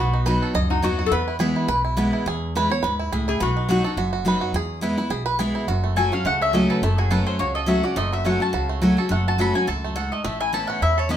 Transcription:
Already playing: upright bass B1, steel-string acoustic guitar B2, five-string banjo D#4 F#4
0.00 five-string banjo B3, resonator guitar played with a steel bar F#4
0.13 five-string banjo D#4
0.26 steel-string acoustic guitar F#3 B3 D#4 F#4, five-string banjo B4
0.42 five-string banjo A4
0.54 upright bass C#2, steel-string acoustic guitar F#2, five-string banjo D#5
0.70 resonator guitar played with a steel bar D#4, five-string banjo F#4
0.82 upright bass D#2, steel-string acoustic guitar F#3 B3 D#4 F#4, five-string banjo D#4, resonator guitar played with a steel bar F#4
0.99 five-string banjo F#4
1.06 resonator guitar played with a steel bar A4
1.11 upright bass E2, steel-string acoustic guitar E2, five-string banjo B3, resonator guitar played with a steel bar B4
1.28 five-string banjo E4
1.39 steel-string acoustic guitar E3 G#3 B3 E4, five-string banjo G#4
1.56 five-string banjo E4
1.68 upright bass B1, steel-string acoustic guitar B2, five-string banjo B4
1.85 five-string banjo E4
1.97 steel-string acoustic guitar E3 G#3 B3 E4, five-string banjo B3
2.13 five-string banjo E4
2.26 upright bass E2, steel-string acoustic guitar E2, five-string banjo G#4
2.55 steel-string acoustic guitar E3 G#3 B3 E4, five-string banjo B4
2.70 steel-string acoustic guitar B3 E4, five-string banjo C#5
2.83 upright bass D#2, steel-string acoustic guitar G#2, five-string banjo B4
2.99 five-string banjo E4
3.12 upright bass C#2, steel-string acoustic guitar A2, five-string banjo G#4
3.28 five-string banjo E4, resonator guitar played with a steel bar G#4
3.40 upright bass B1, steel-string acoustic guitar B2, five-string banjo B3, resonator guitar played with a steel bar F#4
3.57 five-string banjo D#4
3.69 steel-string acoustic guitar F#3 B3 D#4 F#4, five-string banjo F#4, resonator guitar played with a steel bar F#4
3.84 steel-string acoustic guitar D#4 F#4, five-string banjo A4
3.97 upright bass F#1, steel-string acoustic guitar F#2, five-string banjo F#4
4.13 five-string banjo F#4
4.25 steel-string acoustic guitar F#3 B3 D#4 F#4, five-string banjo B4
4.41 five-string banjo F#4
4.53 upright bass E2, steel-string acoustic guitar E2, five-string banjo G#4
4.81 steel-string acoustic guitar E3 G#3 B3 E4, five-string banjo E4
4.97 steel-string acoustic guitar B3 E4, five-string banjo E4
5.10 upright bass B1, steel-string acoustic guitar B2, five-string banjo G#4
5.26 five-string banjo B4
5.39 steel-string acoustic guitar E3 G#3 B3 E4, five-string banjo G#4
5.55 five-string banjo E4
5.67 upright bass F#1, steel-string acoustic guitar F#2, five-string banjo F#4
5.84 five-string banjo A3
5.96 steel-string acoustic guitar F#3 A3 C#4 F#4, five-string banjo A4, mandolin G#5
6.12 five-string banjo C#4, steel-string acoustic guitar C#4 F#4, mandolin F5
6.25 upright bass C#2, steel-string acoustic guitar C#3, five-string banjo A3, mandolin F#5
6.41 five-string banjo C#4, mandolin E5
6.53 steel-string acoustic guitar F#3 A3 C#4 F#4, five-string banjo F#4, mandolin D#5
6.70 five-string banjo A4, mandolin B4
6.82 upright bass F#1, steel-string acoustic guitar F#2, five-string banjo A3, mandolin A4
6.98 five-string banjo F#4, mandolin G#4
7.10 steel-string acoustic guitar F#3 A3 C#4 F#4, five-string banjo A4, mandolin B4
7.27 five-string banjo C#4, mandolin C5
7.39 upright bass C#2, steel-string acoustic guitar C#3, five-string banjo F#4, mandolin C#5
7.55 five-string banjo A4, mandolin D#5
7.66 steel-string acoustic guitar F#3 A3 C#4 F#4, five-string banjo C#4, mandolin E5
7.83 steel-string acoustic guitar C#4 F#4, five-string banjo F#4, mandolin D5
7.96 upright bass F#1, steel-string acoustic guitar F#2, five-string banjo A3, mandolin D#5
8.12 five-string banjo F#4, mandolin E5
8.24 steel-string acoustic guitar F#3 A3 C#4 F#4, five-string banjo A3, mandolin F#5
8.40 five-string banjo C#4, steel-string acoustic guitar C#4 F#4, mandolin A5
8.53 upright bass C#2, steel-string acoustic guitar C#3, five-string banjo F#4
8.69 five-string banjo A3
8.82 steel-string acoustic guitar F#3 A3 C#4 F#4, five-string banjo F#4
8.97 steel-string acoustic guitar C#4 F#4, five-string banjo A4
9.09 upright bass F#1, steel-string acoustic guitar F#2, five-string banjo A3, mandolin F#5
9.28 five-string banjo F#4, mandolin A5
9.38 steel-string acoustic guitar F#3 A3 C#4 F#4, five-string banjo A4, mandolin B5
9.54 steel-string acoustic guitar C#4 F#4, five-string banjo F#4, mandolin G#5
9.67 upright bass C#2, steel-string acoustic guitar F#2, five-string banjo A4, mandolin A5
9.84 five-string banjo A3
9.96 steel-string acoustic guitar G#2, five-string banjo A4, mandolin F#5
10.12 five-string banjo A3, mandolin D#5
10.24 upright bass A1, steel-string acoustic guitar A2, five-string banjo A3, mandolin E5
10.40 five-string banjo E4, mandolin G#5
10.53 steel-string acoustic guitar E3 B3 C#4 E4, five-string banjo A4, mandolin A5
10.67 five-string banjo C#4, mandolin F#5
10.81 upright bass E2, steel-string acoustic guitar E2, five-string banjo E4, mandolin E5
10.98 five-string banjo A4, mandolin C#5
11.09 steel-string acoustic guitar E3 B3 C#4 E4, five-string banjo C#4, mandolin D#5

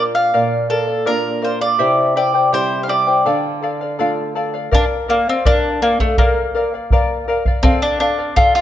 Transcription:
Already playing: nylon-string guitar A#2 A#3 D4 F4, charango A#4 D5
0.00 charango F5
0.15 charango D5 F5, mandolin F5
0.34 nylon-string guitar A#2, charango A#4 D5 F5
0.69 mandolin A4, charango A#4 D5 F5
0.88 charango D5 F5
1.05 nylon-string guitar A#3 D4 F4, charango A#4 D5 F5, mandolin A#4
1.42 charango A#4 D5 F5, mandolin C5
1.61 mandolin D5, charango D5 F5
1.79 nylon-string guitar C3, charango E4 G4 C5 E5 G5
2.16 charango E4 C5 E5 G5, mandolin D5
2.34 charango E4 C5 G5
2.52 nylon-string guitar G3 C4 E4, charango E4 G4 C5 E5 G5, mandolin C5
2.83 mandolin F5
2.88 charango E4 C5 E5 G5, mandolin D5
3.07 charango E4 C5 G5
3.26 nylon-string guitar D3, charango A4 D5 F5
3.62 charango A4 D5 F5
3.81 charango D5 F5
3.99 nylon-string guitar A3 D4 F4, charango A4 D5 F5
4.35 charango A4 D5 F5
4.54 charango D5 F5
4.71 mandolin D4, charango A#4 D5 F5, bombo low
5.08 mandolin A#3, charango A#4 D5 F5
5.27 mandolin C4, charango D5 F5
5.45 mandolin D4, charango A#4 D5 F5, bombo low
5.82 mandolin A#3, charango A#4 D5 F5
6.00 mandolin A3, charango D5 F5, bombo low
6.18 mandolin A#3, charango A#4 D5 F5, bombo low
6.55 charango A#4 D5 F5
6.74 charango D5 F5
6.91 charango A#4 D5 F5, bombo low
7.28 charango A#4 D5 F5
7.45 charango D5 F5, bombo low
7.63 mandolin C4, charango A4 D5 F5, bombo low
7.82 mandolin D4
8.00 mandolin D4, charango A4 D5 F5
8.18 charango D5 F5
8.36 mandolin F4, charango A4 D5 F5, bombo low
8.55 mandolin F4

